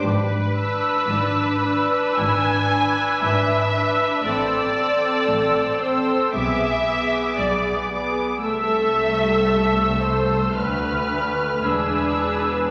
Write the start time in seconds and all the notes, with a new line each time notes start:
0.05 G#1 G#2 B4
0.57 D4 B4 E6
1.09 G#1 G#2
1.64 D4 B4 E6
2.19 G#1 G#2 G#5
2.73 D4 B4 E6
3.23 G#1 G#2 E5
3.75 D4 B4 E6
4.24 A1 A2 C4 A4 D5 E6
4.76 C4 A4 E6
5.29 A1 A2
5.80 C4 A4 C5 E6
6.33 B1 B2 B3 G#4 E5 D6
6.87 B3 G#4 D6
7.40 B1 B2 D5
7.91 B3 G#4 D6
8.46 C2 C3 A3 A4 E5 E6
10.03 C5
10.55 D2 D3 A3 B4 F6
11.64 E1 E2 D4 G#4 B4 E6